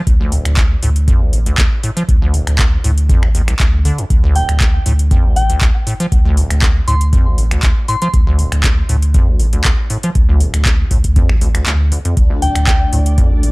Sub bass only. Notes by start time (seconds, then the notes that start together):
0.07 D2
0.46 D2
0.83 D2
1.21 A1
1.58 D2
2.09 D2
2.47 D2
2.84 D2
3.23 A1
3.60 D2
4.10 D2
4.49 D2
4.86 D2
5.24 A1
5.62 D2
6.12 D2
6.51 D2
6.88 D2
7.26 A1
7.63 D2
8.14 D2
8.52 D2
8.89 D2
9.28 A1
9.65 D2
10.15 D2
10.54 D2
10.91 D2
11.29 A1
11.67 D2
12.17 D2
12.55 D2
12.93 D2
13.31 A1